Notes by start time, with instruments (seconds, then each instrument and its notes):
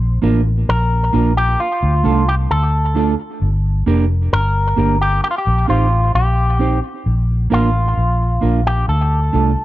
Already playing: fingered electric bass A#1
0.22 fingered electric bass A1, clean electric guitar A#3 D4 F4 A#4
0.69 fingered electric bass A#1, clean electric guitar A#4
1.13 fingered electric bass A#1, clean electric guitar A#3 D4 F4 A#4
1.37 clean electric guitar G4
1.60 clean electric guitar F4
1.83 fingered electric bass D2
2.03 fingered electric bass C2, clean electric guitar A3 D4 F4 A4
2.29 clean electric guitar G4
2.50 fingered electric bass D2, clean electric guitar A4
2.95 clean electric guitar A3 D4 F4 A4
3.42 fingered electric bass G1
3.86 fingered electric bass F1, clean electric guitar A#3 D4 G4 A#4
4.33 fingered electric bass G1, clean electric guitar A#4
4.76 fingered electric bass G1, clean electric guitar A#3 D4 G4 A#4
5.01 clean electric guitar G4
5.24 clean electric guitar G4
5.31 clean electric guitar F4
5.38 clean electric guitar G4
5.47 fingered electric bass A#1
5.68 fingered electric bass A1, clean electric guitar C4 D#4 F4 G4 C5
6.15 fingered electric bass A#1, clean electric guitar G4
6.59 clean electric guitar C4 D#4 G4 C5
7.06 fingered electric bass A#1
7.50 fingered electric bass A1, clean electric guitar A#3 D4 F4 A#4
7.97 fingered electric bass A#1
8.41 fingered electric bass A#1, clean electric guitar A#3 D4 F4 A#4
8.67 clean electric guitar G4
8.88 fingered electric bass D2, clean electric guitar A4
9.33 fingered electric bass C2, clean electric guitar A3 D4 F4 A4